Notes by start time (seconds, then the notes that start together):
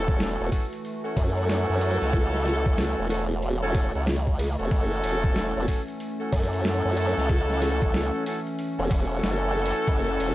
Already playing: E1 E3 A3 C#4 E4 F#4 A4
0.08 kick, open hi-hat
0.20 snare, open hi-hat
0.41 E1, open hi-hat
0.52 C#4 E4 F#4 A4, kick, open hi-hat
0.73 open hi-hat
0.85 open hi-hat
1.05 C#4 E4 F#4 A4, open hi-hat
1.17 F#2, kick, open hi-hat
1.37 open hi-hat
1.49 snare, open hi-hat
1.70 F#2, open hi-hat
1.81 open hi-hat
2.02 C#2, snare, open hi-hat
2.13 kick, open hi-hat
2.34 snare, open hi-hat
2.46 snare
2.66 kick, open hi-hat
2.78 snare, open hi-hat
2.99 E1, open hi-hat
3.10 C#4 E4 F#4 A4, open hi-hat
3.31 open hi-hat
3.42 open hi-hat
3.63 C#4 E4 F#4 A4, open hi-hat
3.75 kick, open hi-hat
3.95 C#2 C#4 E4 F#4 A4, open hi-hat
4.07 snare, open hi-hat
4.27 kick, open hi-hat
4.39 open hi-hat
4.59 E1 C#4 E4 F#4 A4, open hi-hat
4.71 F#1 C#4, kick, open hi-hat
4.92 open hi-hat
5.04 E1, open hi-hat
5.24 kick, open hi-hat
5.36 snare, open hi-hat
5.56 E1, open hi-hat
5.68 C#4 E4 F#4 A4, kick, open hi-hat
5.88 open hi-hat
6.00 open hi-hat
6.21 C#4 E4 F#4 A4, open hi-hat
6.32 F#2, kick, open hi-hat
6.43 open hi-hat
6.53 open hi-hat
6.65 snare, open hi-hat
6.85 F#2, open hi-hat
6.97 open hi-hat
7.17 C#2, snare, open hi-hat
7.29 kick, open hi-hat
7.50 snare, open hi-hat
7.62 snare, open hi-hat
7.82 kick, open hi-hat
7.94 snare, open hi-hat
8.15 open hi-hat
8.26 C#4 E4 F#4 A4, open hi-hat
8.47 open hi-hat
8.59 open hi-hat
8.79 E1 C#4 E4 F#4 A4, open hi-hat
8.91 kick, open hi-hat
9.11 open hi-hat
9.23 F#1, snare, open hi-hat
9.44 open hi-hat
9.66 open hi-hat
9.76 open hi-hat
9.88 F#1, kick, open hi-hat
10.08 open hi-hat
10.20 E1, open hi-hat